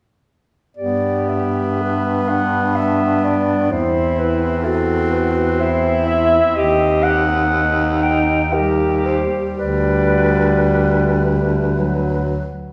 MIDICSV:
0, 0, Header, 1, 5, 480
1, 0, Start_track
1, 0, Key_signature, 1, "major"
1, 0, Tempo, 1032702
1, 359, Time_signature, 3, 2, 24, 8
1, 836, Tempo, 947867
1, 2756, Tempo, 967742
1, 3716, Tempo, 1008403
1, 4196, Tempo, 1050788
1, 4676, Tempo, 1090909
1, 6058, End_track
2, 0, Start_track
2, 0, Title_t, "Clarinet"
2, 0, Program_c, 0, 71
2, 357, Note_on_c, 0, 74, 50
2, 598, Note_on_c, 0, 76, 50
2, 605, Note_off_c, 0, 74, 0
2, 1085, Note_on_c, 0, 78, 53
2, 1093, Note_off_c, 0, 76, 0
2, 1321, Note_on_c, 0, 76, 53
2, 1328, Note_off_c, 0, 78, 0
2, 1566, Note_on_c, 0, 74, 50
2, 1574, Note_off_c, 0, 76, 0
2, 1805, Note_on_c, 0, 72, 62
2, 1813, Note_off_c, 0, 74, 0
2, 2044, Note_on_c, 0, 71, 58
2, 2052, Note_off_c, 0, 72, 0
2, 2273, Note_on_c, 0, 69, 59
2, 2281, Note_off_c, 0, 71, 0
2, 2510, Note_on_c, 0, 71, 63
2, 2518, Note_off_c, 0, 69, 0
2, 2753, Note_on_c, 0, 72, 74
2, 2760, Note_off_c, 0, 71, 0
2, 2990, Note_off_c, 0, 72, 0
2, 2993, Note_on_c, 0, 76, 68
2, 3233, Note_on_c, 0, 75, 82
2, 3240, Note_off_c, 0, 76, 0
2, 3471, Note_on_c, 0, 78, 75
2, 3479, Note_off_c, 0, 75, 0
2, 3952, Note_on_c, 0, 79, 61
2, 3959, Note_off_c, 0, 78, 0
2, 4194, Note_on_c, 0, 70, 61
2, 4201, Note_off_c, 0, 79, 0
2, 4435, Note_on_c, 0, 72, 53
2, 4442, Note_off_c, 0, 70, 0
2, 4605, Note_off_c, 0, 72, 0
2, 4677, Note_on_c, 0, 74, 57
2, 5629, Note_off_c, 0, 74, 0
2, 6058, End_track
3, 0, Start_track
3, 0, Title_t, "Alto saxophone"
3, 0, Program_c, 1, 65
3, 362, Note_on_c, 1, 67, 37
3, 844, Note_on_c, 1, 71, 40
3, 852, Note_off_c, 1, 67, 0
3, 1085, Note_on_c, 1, 62, 43
3, 1092, Note_off_c, 1, 71, 0
3, 1802, Note_off_c, 1, 62, 0
3, 1805, Note_on_c, 1, 64, 46
3, 2280, Note_on_c, 1, 66, 45
3, 2287, Note_off_c, 1, 64, 0
3, 2761, Note_on_c, 1, 64, 54
3, 2768, Note_off_c, 1, 66, 0
3, 3235, Note_off_c, 1, 64, 0
3, 3238, Note_on_c, 1, 67, 56
3, 3573, Note_off_c, 1, 67, 0
3, 3713, Note_on_c, 1, 63, 51
3, 4193, Note_on_c, 1, 67, 55
3, 4200, Note_off_c, 1, 63, 0
3, 4674, Note_off_c, 1, 67, 0
3, 4676, Note_on_c, 1, 71, 46
3, 5866, Note_off_c, 1, 71, 0
3, 6058, End_track
4, 0, Start_track
4, 0, Title_t, "Tenor saxophone"
4, 0, Program_c, 2, 66
4, 358, Note_on_c, 2, 59, 38
4, 1787, Note_off_c, 2, 59, 0
4, 1808, Note_on_c, 2, 60, 47
4, 4040, Note_off_c, 2, 60, 0
4, 4196, Note_on_c, 2, 55, 43
4, 5645, Note_on_c, 2, 54, 35
4, 5652, Note_off_c, 2, 55, 0
4, 5967, Note_off_c, 2, 54, 0
4, 6058, End_track
5, 0, Start_track
5, 0, Title_t, "Baritone saxophone"
5, 0, Program_c, 3, 67
5, 362, Note_on_c, 3, 43, 36
5, 1789, Note_off_c, 3, 43, 0
5, 1806, Note_on_c, 3, 40, 45
5, 3153, Note_off_c, 3, 40, 0
5, 3237, Note_on_c, 3, 39, 55
5, 4520, Note_off_c, 3, 39, 0
5, 4675, Note_on_c, 3, 38, 44
5, 5949, Note_off_c, 3, 38, 0
5, 6058, End_track
0, 0, End_of_file